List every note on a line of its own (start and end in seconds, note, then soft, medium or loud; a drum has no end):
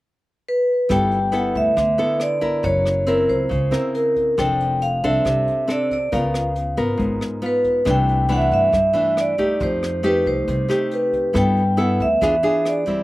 0.49 0.88 B4 medium
0.89 1.51 G1 medium
0.89 1.75 G3 medium
0.89 1.17 B3 medium
0.89 1.18 E4 medium
0.89 1.18 A4 medium
0.89 1.36 G5 medium
0.89 kick medium
0.89 cross-stick medium
0.89 closed hi-hat soft
1.11 closed hi-hat soft
1.32 1.76 B3 medium
1.32 1.76 E4 medium
1.32 1.77 A4 medium
1.32 1.55 F#5 medium
1.32 closed hi-hat soft
1.55 1.75 D2 medium
1.55 2.17 E5 medium
1.55 kick soft
1.55 closed hi-hat soft
1.77 1.97 D2 medium
1.77 2.62 D3 medium
1.77 kick soft
1.77 cross-stick medium
1.77 closed hi-hat soft
1.98 2.38 B3 medium
1.98 2.39 E4 medium
1.98 2.39 A4 medium
1.98 closed hi-hat soft
2.20 2.66 D5 medium
2.20 cross-stick medium
2.20 closed hi-hat soft
2.41 3.04 E4 medium
2.41 3.04 A#4 medium
2.41 kick soft
2.41 closed hi-hat soft
2.63 3.25 F#1 loud
2.63 3.48 F#3 soft
2.63 3.09 C#5 medium
2.63 kick medium
2.63 closed hi-hat soft
2.86 cross-stick medium
2.86 closed hi-hat soft
3.07 3.50 C4 medium
3.07 3.51 E4 medium
3.07 3.30 A#4 medium
3.07 3.51 A#4 medium
3.07 closed hi-hat soft
3.29 3.49 C#2 medium
3.29 3.91 C5 medium
3.29 kick soft
3.29 closed hi-hat soft
3.49 3.71 C#2 medium
3.49 4.35 C#3 medium
3.49 kick medium
3.49 closed hi-hat soft
3.71 4.34 C4 soft
3.71 4.34 E4 medium
3.71 4.34 A#4 medium
3.71 cross-stick medium
3.71 closed hi-hat soft
3.94 4.35 A#4 medium
3.94 closed hi-hat soft
4.16 kick soft
4.16 closed hi-hat soft
4.38 4.99 F1 medium
4.38 5.23 F3 medium
4.38 5.00 C4 medium
4.38 5.00 D4 soft
4.38 5.00 A4 medium
4.38 4.83 G5 medium
4.38 kick medium
4.38 cross-stick medium
4.38 closed hi-hat soft
4.60 closed hi-hat soft
4.82 5.04 F5 medium
4.82 closed hi-hat soft
5.04 5.24 C2 medium
5.04 5.65 C4 medium
5.04 5.65 D4 medium
5.04 5.66 A4 medium
5.04 5.65 E5 medium
5.04 kick soft
5.04 closed hi-hat soft
5.25 5.46 C2 medium
5.25 6.10 C3 medium
5.25 kick medium
5.25 cross-stick medium
5.25 closed hi-hat soft
5.47 closed hi-hat soft
5.67 5.96 C4 medium
5.67 5.96 D4 medium
5.67 5.97 A4 medium
5.67 5.92 D5 medium
5.67 cross-stick medium
5.67 closed hi-hat soft
5.91 6.14 D5 medium
5.91 kick soft
5.91 closed hi-hat soft
6.12 6.74 C#2 loud
6.12 6.97 C#3 soft
6.12 6.55 B3 medium
6.12 6.55 F4 medium
6.12 6.56 A#4 medium
6.12 6.74 F5 medium
6.12 kick medium
6.12 closed hi-hat soft
6.34 cross-stick medium
6.34 closed hi-hat soft
6.56 closed hi-hat soft
6.77 6.98 G#1 medium
6.77 7.39 B3 medium
6.77 7.39 F4 medium
6.77 7.39 A#4 medium
6.77 kick soft
6.77 closed hi-hat soft
6.98 7.20 G#1 medium
6.98 7.83 G#2 medium
6.98 kick medium
6.98 closed hi-hat soft
7.21 cross-stick medium
7.21 closed hi-hat soft
7.42 7.82 B3 medium
7.42 7.83 F4 medium
7.42 closed hi-hat soft
7.46 7.89 B4 medium
7.64 kick soft
7.64 closed hi-hat soft
7.85 8.48 C2 loud
7.85 8.71 C3 medium
7.85 8.26 E3 medium
7.85 8.26 A3 medium
7.85 8.26 D4 medium
7.85 kick medium
7.85 cross-stick medium
7.85 closed hi-hat soft
7.90 8.29 G5 medium
8.08 closed hi-hat soft
8.29 8.72 E3 medium
8.29 8.73 A3 medium
8.29 8.73 D4 medium
8.29 8.36 F#5 medium
8.29 closed hi-hat soft
8.36 8.41 E5 medium
8.42 8.51 F#5 medium
8.52 8.72 G2 medium
8.52 9.20 E5 medium
8.52 kick soft
8.52 closed hi-hat soft
8.72 9.58 G2 soft
8.72 8.94 G2 medium
8.72 kick medium
8.72 cross-stick soft
8.72 closed hi-hat soft
8.93 9.34 E3 medium
8.93 9.35 A3 soft
8.93 9.35 D4 medium
8.93 closed hi-hat soft
9.17 9.63 D5 medium
9.17 cross-stick medium
9.17 closed hi-hat soft
9.38 10.00 A3 soft
9.38 10.00 D#4 medium
9.38 10.01 G4 medium
9.38 kick soft
9.38 closed hi-hat soft
9.60 10.22 F2 loud
9.60 10.45 F3 medium
9.60 10.07 C5 medium
9.60 kick medium
9.60 closed hi-hat soft
9.83 cross-stick medium
9.83 closed hi-hat soft
10.03 10.65 A3 medium
10.03 10.65 D#4 medium
10.03 10.66 G4 medium
10.03 10.27 B4 medium
10.03 closed hi-hat soft
10.26 10.46 C2 medium
10.26 10.94 C5 medium
10.26 kick soft
10.26 closed hi-hat soft
10.48 10.68 C2 medium
10.48 11.32 C3 medium
10.48 kick soft
10.48 closed hi-hat soft
10.68 11.31 A3 medium
10.68 11.31 D#4 medium
10.68 11.31 G4 medium
10.68 cross-stick medium
10.68 closed hi-hat soft
10.91 11.37 B4 medium
10.91 closed hi-hat soft
11.13 kick soft
11.13 closed hi-hat soft
11.33 11.96 G2 loud
11.33 12.18 G3 soft
11.33 11.62 B3 soft
11.33 11.62 E4 soft
11.33 11.62 A4 medium
11.33 11.76 G5 medium
11.33 kick medium
11.33 cross-stick medium
11.33 closed hi-hat soft
11.57 closed hi-hat soft
11.77 12.07 B3 medium
11.77 12.07 E4 medium
11.77 12.07 A4 medium
11.77 12.01 F#5 medium
11.77 closed hi-hat soft
12.00 12.20 D2 medium
12.00 12.68 E5 medium
12.00 kick soft
12.00 closed hi-hat soft
12.21 12.42 E2 medium
12.21 13.03 E3 medium
12.21 12.34 D4 medium
12.21 12.34 F4 medium
12.21 12.35 G#4 medium
12.21 kick medium
12.21 cross-stick medium
12.21 closed hi-hat soft
12.43 12.83 D4 medium
12.43 12.83 F4 medium
12.43 12.83 G#4 medium
12.43 closed hi-hat soft
12.65 13.03 D5 medium
12.65 cross-stick medium
12.65 closed hi-hat soft
12.86 13.03 G3 medium
12.86 13.03 C4 medium
12.86 13.03 E4 medium
12.86 kick soft
12.86 closed hi-hat soft